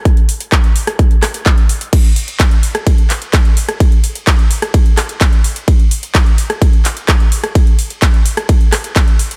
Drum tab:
CC |----------------|x---------------|----------------|----------------|
RD |----------------|x---x---x---x---|x---x---x---x---|x---x---x---x---|
HH |xxoxxxoxxxoxxxox|xxoxxxoxxxoxxxox|xxoxxxoxxxoxxxox|xxoxxxoxxxoxxxox|
CP |----x-----x-x---|----x-----x-x---|----x-----x-x---|----x-----x-x---|
SD |-------r--r-----|-------r----r--r|-------r--r-----|-------r----r--r|
BD |o---o---o---o---|o---o---o---o---|o---o---o---o---|o---o---o---o---|

CC |----------------|
RD |x---x---x---x---|
HH |xxoxxxoxxxoxxxox|
CP |----x-----x-x---|
SD |-------r--r-----|
BD |o---o---o---o---|